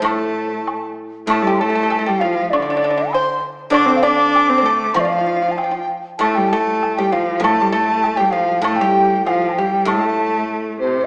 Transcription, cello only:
\new Staff \with { instrumentName = "Cello" } { \clef bass \time 2/4 \tempo 4 = 97 a4. r8 | a16 g16 a8. g16 f8 | d4. r8 | d'16 c'16 d'8. c'16 a8 |
f4. r8 | a16 g16 a8. g16 f8 | a16 g16 a8. g16 f8 | a16 g8. f8 g8 |
a4. c8 | }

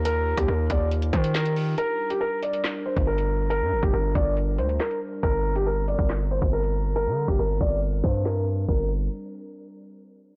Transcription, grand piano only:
\new Staff \with { instrumentName = "Grand piano" } { \time 4/4 \key g \minor \tempo 4 = 139 bes'8. g'16 bes'8 d''8 r8 c''8 bes'8 r8 | bes'8. g'16 bes'8 d''8 r8 c''8 bes'4 | bes'8. g'16 bes'8 d''8 r8 c''8 bes'8 r8 | bes'8. g'16 bes'8 d''8 r8 c''8 bes'4 |
bes'8. g'16 bes'8 d''8 r8 c''8 bes'8 r8 | bes'8 r2. r8 | }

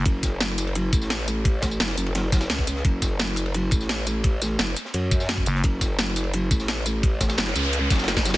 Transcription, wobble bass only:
\new Staff \with { instrumentName = "Wobble bass" } { \clef bass \time 4/4 \key fis \minor \tempo 4 = 172 fis,,2~ fis,,8 a,,4.~ | a,,4 fis,,8 fis,,4. cis,4 | fis,,2~ fis,,8 a,,4.~ | a,,4 fis,,8 r8 fis,4. r8 |
fis,,2~ fis,,8 a,,4.~ | a,,4 fis,,8 cis,4 fis,,4. | }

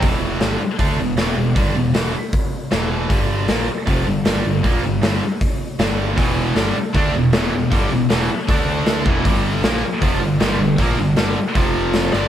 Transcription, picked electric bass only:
\new Staff \with { instrumentName = "Picked electric bass" } { \clef bass \time 4/4 \key e \phrygian \tempo 4 = 156 e,,4 g,,8 r8 d,8 e,,8 e,,8 e,,8 | g,,8 e,,8 e,,8 r4. e,,4 | g,,4 bes,,8 r8 f,,8 g,,8 g,,8 g,,8 | bes,,8 g,,8 g,,8 r4. g,,4 |
e,,4 g,,8 r8 d,8 e,,8 e,,8 e,,8 | g,,8 e,,8 e,,8 r8 d,4. e,,8 | g,,4 bes,,8 r8 f,,8 g,,8 g,,8 g,,8 | bes,,8 g,,8 g,,8 r8 f,,4. g,,8 | }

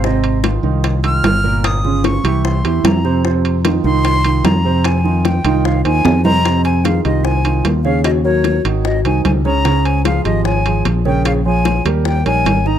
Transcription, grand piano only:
\new Staff \with { instrumentName = "Grand piano" } { \time 4/4 \key f \minor \tempo 4 = 150 <c c' c''>4 <ees ees' f'>8 <ees ees' f'>4 <ees ees' f'>4 <bes, bes bes'>8~ | <bes, bes bes'>8 <des des' f'>4 <e e' g'>4 <e e' g'>4 <c c' c''>8 | <c c' c''>4 <ees ees' f'>8 <ees ees' f'>4 <ees ees' f'>4 <c c' c''>8~ | <c c' c''>8 <ees ees' f'>4 <ees ees' f'>4 <ees ees' f'>4 <c c' c''>8 |
<c c' c''>4 <ees ees' f'>8 <ees ees' f'>4 <ees ees' f'>4 <des des' des''>8~ | <des des' des''>8 <ges ges' bes'>4 <ees ees' ges'>4 <ees ees' ges'>4 <des des' des''>8 | <des des' des''>4 <f f' aes'>8 <f f' aes'>4 <f f' aes'>4 <des des' des''>8~ | <des des' des''>8 <f f' aes'>4 <g g' bes'>4 <g ees' bes'>4 <ees ees' ees''>8 | }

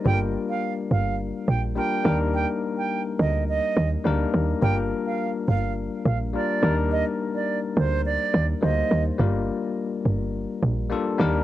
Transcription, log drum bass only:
\new Staff \with { instrumentName = "Log drum bass" } { \clef bass \time 4/4 \key g \minor \tempo 4 = 105 g,,8. r8. g,,4 bes,,8. r16 ees,8~ | ees,8 r4 d,4 ees,8 d,8 ees,8 | g,,8. r8. g,,4 bes,,8. r16 ees,8~ | ees,8 r4 d,4 ees,8 d,8 ees,8 |
g,,8. r8. g,,4 bes,,8. r16 ees,8 | }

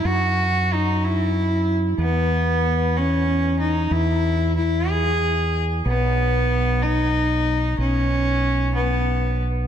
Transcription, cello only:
\new Staff \with { instrumentName = "Cello" } { \time 6/8 \key b \major \tempo 4. = 62 fis'4 dis'8 e'4 r8 | b4. cis'4 dis'8 | e'4 e'8 gis'4 r8 | b4. dis'4. |
cis'4. b4 r8 | }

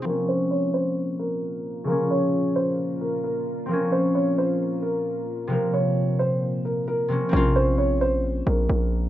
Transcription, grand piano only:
\new Staff \with { instrumentName = "Grand piano" } { \time 4/4 \key bes \minor \tempo 4 = 132 bes'8 c''8 des''8 c''4 bes'4. | bes'8 des''4 c''4 bes'8 bes'4 | bes'8 c''8 des''8 c''4 bes'4. | bes'8 des''4 c''4 bes'8 bes'4 |
bes'8 c''8 des''8 c''4 bes'4. | }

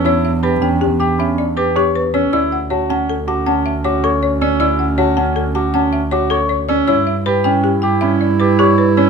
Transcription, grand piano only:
\new Staff \with { instrumentName = "Grand piano" } { \time 6/4 \key d \major \tempo 4 = 158 e'8 r8 g'8 cis'8 r8 g'8 cis'8 r8 g'8 cis''8 r8 cis'8 | e'8 r8 fis'8 cis'8 r8 fis'8 cis'8 r8 fis'8 cis''8 r8 cis'8 | e'8 r8 fis'8 cis'8 r8 fis'8 cis'8 r8 fis'8 cis''8 r8 cis'8 | e'8 r8 g'8 cis'8 r8 g'8 cis'8 r8 g'8 cis''8 r8 cis'8 | }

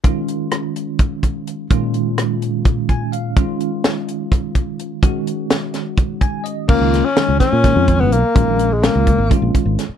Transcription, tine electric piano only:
<<
  \new Staff \with { instrumentName = "Tine electric piano" } { \time 7/8 \key des \major \tempo 4 = 126 r2. r8 | r2 r8 aes''8 f''8 | r2. r8 | r2 r8 aes''8 ees''8 |
r2. r8 | r2. r8 | }
  \new Staff \with { instrumentName = "Tine electric piano" } { \clef bass \time 7/8 \key des \major <ees aes des' f'>2.~ <ees aes des' f'>8 | <bes, ees aes des' f'>2.~ <bes, ees aes des' f'>8 | <ees aes des' f'>2.~ <ees aes des' f'>8 | <ees aes des' ges'>2.~ <ees aes des' ges'>8 |
<ees aes des' f'>8. r16 <ees aes des' ees'>8. r16 <ees aes des' f'>4 r8 | <ees aes des' f'>8. r16 <ees aes des' f'>8. r16 <ees aes des' f'>4 r8 | }
>>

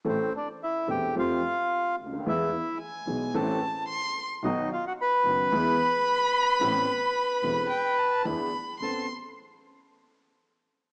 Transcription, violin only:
\new Staff \with { instrumentName = "Violin" } { \time 4/4 \key a \minor \tempo 4 = 110 r1 | r4 gis''4 a''4 c'''8. r16 | r2 b''2~ | b''2 g''8 a''16 a''16 b''4 |
c'''8 r2. r8 | }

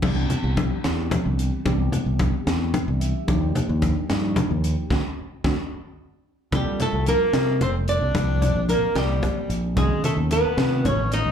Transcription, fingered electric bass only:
\new Staff \with { instrumentName = "Fingered electric bass" } { \clef bass \time 6/8 \key c \major \tempo 4. = 74 c,8 r16 c,8 r16 e,8 r16 c,8 r16 | c,8 r16 c,8 r16 e,8 r16 c,8 r16 | ees,8 r16 ees,8 r16 g,8 r16 ees,8 r16 | d,16 r8. d,16 r4. r16 |
\key g \dorian c,16 r8 c,8 r16 c8 f,,8. c,16 | c,8. bes,,8 r16 c,8 r8 bes,,8 | c,16 r8 dis,8 r16 c8 a,,8. c,16 | }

